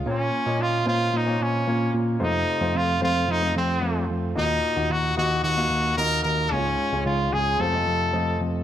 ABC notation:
X:1
M:4/4
L:1/16
Q:1/4=111
K:Bbm
V:1 name="Trumpet"
D4 F2 F2 E2 D4 z2 | E4 F2 F2 E2 C4 z2 | E4 G2 G2 G4 B2 B2 | D4 F2 A2 =A6 z2 |]
V:2 name="Grand piano"
[B,DFd]3 [B,DFe]3 [B,DFc]3 [B,DFd]3 [B,DFd]4 | [=A,CFc]3 [A,CFc]3 [A,CFc]3 [A,CFc]3 [A,CFc]4 | [B,EGe]3 [B,EGg]3 [B,EGe]3 [B,EGf]3 [B,EGe]4 | [A,DFd]3 [A,DFd]3 [A,DFA]2 [=A,CFc] [A,CFe]3 [A,CFe]4 |]
V:3 name="Grand piano" clef=bass
z16 | C,6 z8 z2 | B,,6 z8 z2 | A,,6 z2 C,6 z2 |]
V:4 name="Tine electric piano" clef=bass
B,,2 z B,, B,,2 B,,2 B,,2 B,,2 B,,2 B,,2 | F,,2 z F,, F,,2 F,,2 F,,2 F,,2 F,,2 F,,2 | E,,2 z E,, E,,2 E,,2 E,,2 E,,2 E,,2 E,,2 | D,,2 z D,, D,,2 D,,2 F,,2 F,,2 F,,2 F,,2 |]